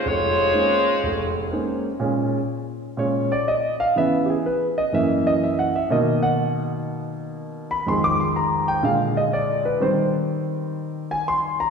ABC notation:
X:1
M:4/4
L:1/8
Q:"Swing" 1/4=123
K:Bbm
V:1 name="Saxophone section"
[A,Fcd]6 z2 | z8 | z8 | z8 |
z8 | z8 |]
V:2 name="Grand piano"
z8 | z4 d =d e f | _f [=GA] _c e f e (3f _g f | ^d ^f z4 z =b |
(3c' =d' c' b =g f e =d _c | c z4 a c' b |]
V:3 name="Grand piano" clef=bass
F,,,2 [A,B,CDE] z F,,,2 [A,B,CDE] z | [B,,A,D] z3 [B,,A,D] z3 | [D,_F,_C] z3 [G,,F,B,]3 z | [=B,,^D,^A,]8 |
[F,,E,A,]4 [B,,=D,A,]4 | [E,=G,C]8 |]